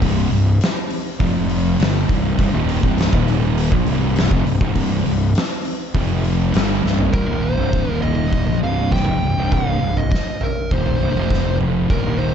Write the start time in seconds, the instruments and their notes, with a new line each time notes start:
Already playing: fingered electric bass C1, distorted electric guitar C2 G2 C3
0.02 kick, open hi-hat
0.30 fingered electric bass C1, distorted electric guitar C2 G2, open hi-hat
0.61 snare, open hi-hat
0.90 open hi-hat
1.20 fingered electric bass F1, distorted electric guitar F2 C3 F3, kick, open hi-hat
1.49 open hi-hat
1.80 fingered electric bass G1, distorted electric guitar G2 D3 G3, snare, open hi-hat
2.09 fingered electric bass C1, distorted electric guitar C2 G2 C3, kick, open hi-hat
2.38 fingered electric bass C1, distorted electric guitar C2 G2, kick, open hi-hat
2.53 fingered electric bass D#1, distorted electric guitar D#2 A#2 D#3
2.69 open hi-hat
2.83 fingered electric bass C1, distorted electric guitar C2 G2 C3, kick
2.98 snare, open hi-hat
3.13 fingered electric bass D#1, distorted electric guitar D#2 A#2 D#3, kick
3.28 open hi-hat
3.58 open hi-hat
3.72 fingered electric bass A#1, distorted electric guitar A#2 F3, kick
3.86 fingered electric bass C1, distorted electric guitar C2 G2 C3, open hi-hat
4.16 snare, open hi-hat
4.31 fingered electric bass F1, distorted electric guitar F2 C3, kick
4.47 fingered electric bass C1, distorted electric guitar C2 G2, open hi-hat
4.61 fingered electric bass C1, distorted electric guitar C2 G2 C3, kick
4.75 kick, open hi-hat
5.06 fingered electric bass C1, distorted electric guitar C2 G2, open hi-hat
5.35 snare, open hi-hat
5.65 open hi-hat
5.94 fingered electric bass F1, distorted electric guitar F2 C3 F3, kick, open hi-hat
6.24 open hi-hat
6.54 fingered electric bass G1, distorted electric guitar G2 D3 G3, snare, open hi-hat
6.84 fingered electric bass C1, distorted electric guitar C2 G2 C3, snare
6.99 floor tom
7.13 fingered electric bass C1, distorted electric guitar C2 G2, lead electric guitar A#4, kick, floor tom
7.29 fingered electric bass D#1, distorted electric guitar D#2 A#2 D#3
7.42 lead electric guitar C5
7.58 fingered electric bass C1, distorted electric guitar C2 G2 C3, floor tom
7.73 kick
7.89 fingered electric bass D#1, distorted electric guitar D#2 A#2 D#3, lead electric guitar A#4
8.02 lead electric guitar D#5, floor tom
8.33 kick
8.47 fingered electric bass A#1, distorted electric guitar A#2 F3, floor tom
8.63 fingered electric bass C1, distorted electric guitar C2 G2 C3, lead electric guitar F5
8.92 lead electric guitar G5, kick, snare, floor tom
9.07 fingered electric bass F1, distorted electric guitar F2 C3, mid tom
9.22 fingered electric bass C1, distorted electric guitar C2 G2
9.38 fingered electric bass C1, distorted electric guitar C2 G2 C3
9.52 lead electric guitar F5, kick, floor tom
9.82 fingered electric bass C1, distorted electric guitar C2 G2
9.97 lead electric guitar D#5, floor tom
10.12 kick, snare
10.41 lead electric guitar A#4, floor tom
10.71 fingered electric bass D#1, distorted electric guitar D#2 A#2 D#3, lead electric guitar C5, kick, mid tom
10.86 floor tom
11.01 fingered electric bass C1, distorted electric guitar C2 G2
11.16 fingered electric bass F1, distorted electric guitar F2 C3 F3
11.31 kick, snare, floor tom
11.45 mid tom
11.61 mid tom
11.89 fingered electric bass C1, distorted electric guitar C2 G2, lead electric guitar A#4, kick, floor tom
12.05 fingered electric bass D#1, distorted electric guitar D#2 A#2 D#3
12.18 lead electric guitar C5